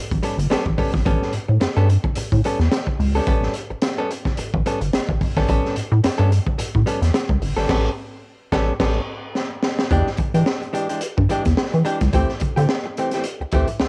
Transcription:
0.11 A1, kick, closed hi-hat
0.22 G3 B3 C#4 A4, closed hi-hat
0.38 G1, muted hollow-body jazz guitar stroke, closed hi-hat
0.50 A1 G3 B3 C#4 A4, snare, closed hi-hat
0.66 A1, muted hollow-body jazz guitar stroke, kick
0.78 G3 B3 C#4 A4, kick, open hi-hat
0.93 G#1, muted hollow-body jazz guitar stroke, kick, snare
1.05 A1 G3 B3 C#4 A4, kick, closed hi-hat
1.22 snare
1.33 A2, closed hi-hat
1.48 A2, muted hollow-body jazz guitar stroke
1.60 G2, muted hollow-body jazz guitar stroke, snare, closed hi-hat
1.77 G2 G3 B3 C#4 A4
1.89 muted hollow-body jazz guitar stroke, closed hi-hat
2.04 muted hollow-body jazz guitar stroke, kick
2.15 A2, muted hollow-body jazz guitar stroke, closed hi-hat
2.32 A2, kick, closed hi-hat
2.44 G3 B3 C#4 A4, closed hi-hat
2.59 E2, muted hollow-body jazz guitar stroke, snare
2.71 muted hollow-body jazz guitar stroke, snare, closed hi-hat
2.87 muted hollow-body jazz guitar stroke, kick
2.99 C#2, open hi-hat
3.15 G3 B3 C#4 A4
3.27 A1 G3 B3 C#4 A4, kick, closed hi-hat
3.43 snare
3.54 closed hi-hat
3.70 A1, muted hollow-body jazz guitar stroke
3.82 muted hollow-body jazz guitar stroke, snare, closed hi-hat
3.98 G3 B3 C#4 A4
4.11 muted hollow-body jazz guitar stroke, closed hi-hat
4.25 muted hollow-body jazz guitar stroke, kick, snare
4.37 A1, muted hollow-body jazz guitar stroke, closed hi-hat
4.54 A1, kick
4.66 G3 B3 C#4 A4, closed hi-hat
4.81 G1, muted hollow-body jazz guitar stroke, closed hi-hat
4.93 A1, muted hollow-body jazz guitar stroke, snare, closed hi-hat
5.08 A1, muted hollow-body jazz guitar stroke, kick
5.21 kick, open hi-hat
5.36 G#1 G3 B3 C#4 A4, kick, snare
5.48 A1 G3 B3 C#4 A4, kick, closed hi-hat
5.65 snare
5.76 A2, closed hi-hat
5.92 A2, muted hollow-body jazz guitar stroke
6.04 G2, muted hollow-body jazz guitar stroke, snare, closed hi-hat
6.18 G2 G3 B3 C#4 A4
6.31 muted hollow-body jazz guitar stroke, closed hi-hat
6.47 muted hollow-body jazz guitar stroke, kick
6.58 A2, muted hollow-body jazz guitar stroke, closed hi-hat
6.75 A2, kick
6.86 G3 B3 C#4 A4, closed hi-hat
7.02 E2, muted hollow-body jazz guitar stroke, snare, closed hi-hat
7.13 muted hollow-body jazz guitar stroke, snare, closed hi-hat
7.29 C#2, muted hollow-body jazz guitar stroke, kick
7.42 G1, open hi-hat
7.57 G#1 G3 B3 C#4 A4, snare
7.69 A1 G3 B3 C#4 A4, kick, snare, crash
8.52 A1 G3 B3 C#4 A4, kick, snare
8.80 A1 G3 B3 C#4 A4, kick, snare, crash
9.35 snare
9.63 snare
9.79 snare
9.91 E2 E3 G#3 D4 G4, kick, closed hi-hat
10.07 snare
10.17 E3, muted hollow-body jazz guitar stroke, kick, closed hi-hat
10.34 E3 G#3 D4 G4, closed hi-hat
10.46 muted hollow-body jazz guitar stroke, snare
10.62 muted hollow-body jazz guitar stroke, closed hi-hat
10.73 E3 G#3 D4 G4, closed hi-hat
10.89 E3 G#3 D4 G4, closed hi-hat
11.01 closed hi-hat
11.17 G2, muted hollow-body jazz guitar stroke, kick
11.29 E3 G#3 D4 G4, closed hi-hat
11.45 E2, muted hollow-body jazz guitar stroke, kick, snare, closed hi-hat
11.57 snare
11.72 E3, muted hollow-body jazz guitar stroke, closed hi-hat
11.85 E3 G#3 D4 G4, closed hi-hat
12.00 C#2, muted hollow-body jazz guitar stroke, kick, snare, closed hi-hat
12.13 D2 E3 A3 C4 G4, kick, closed hi-hat
12.29 snare
12.40 D3, muted hollow-body jazz guitar stroke, kick, closed hi-hat
12.56 D3 E3 A3 C4 G4, closed hi-hat
12.69 muted hollow-body jazz guitar stroke, snare
12.86 muted hollow-body jazz guitar stroke
12.97 E3 A3 C4 G4, closed hi-hat
13.11 A3 C4 G4, snare, closed hi-hat
13.15 E3
13.24 closed hi-hat
13.40 D2, muted hollow-body jazz guitar stroke
13.52 D2 E3 A3 C4 G4, kick, closed hi-hat
13.68 muted hollow-body jazz guitar stroke, closed hi-hat
13.80 D2, muted hollow-body jazz guitar stroke, snare

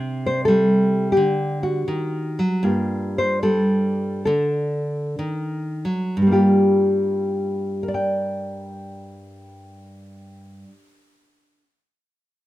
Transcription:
Already playing: C3
0.26 C5
0.45 G3 A4
1.12 G4
1.17 D3
1.63 F#4
1.88 D#3
2.39 F#3
2.63 G2 A#3 F4 G4
3.18 C5
3.43 G3 A4
4.25 D3 A4
5.19 D#3
5.85 F#3
6.17 G2
6.22 G3
6.27 A#3
6.32 F4 G4
7.83 A#4
7.88 D5
7.94 G5

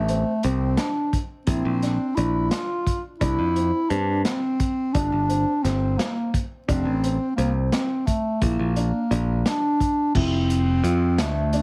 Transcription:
Already playing: A1 A3
0.08 C4, closed hi-hat
0.43 C2 C4, closed hi-hat
0.77 D4, snare, closed hi-hat
1.13 kick, closed hi-hat
1.47 A#1 C4 E4, kick, closed hi-hat
1.65 A#1
1.82 D4, snare, closed hi-hat
2.15 A#1 D4 E4, closed hi-hat
2.50 F4, snare, closed hi-hat
2.87 kick, closed hi-hat
3.19 C2 D4 E4, kick, closed hi-hat
3.39 F2
3.56 C4, closed hi-hat
3.90 G2 C4 D4, closed hi-hat
4.24 C4, snare, closed hi-hat
4.60 kick, closed hi-hat
4.93 G1 D4, kick, closed hi-hat
5.12 G1
5.29 C4, closed hi-hat
5.63 G1 C4, snare, closed hi-hat
5.97 A#3, snare, closed hi-hat
6.34 kick, closed hi-hat
6.67 F1 C4 D4, kick, closed hi-hat
6.85 A1
7.04 C4, closed hi-hat
7.36 C2 A#3 C4, closed hi-hat
7.71 C4, snare, closed hi-hat
8.06 A3, kick, closed hi-hat
8.42 A#1 A#3 E4, kick, closed hi-hat
8.59 A#1
8.76 D4, closed hi-hat
9.11 A#1 D4, closed hi-hat
9.46 D4, snare, closed hi-hat
9.80 kick, closed hi-hat
10.15 F1 C4 E4, kick, crash
10.50 closed hi-hat
10.84 F2 F4, closed hi-hat
11.18 D2 A3, snare, closed hi-hat
11.53 D4, closed hi-hat

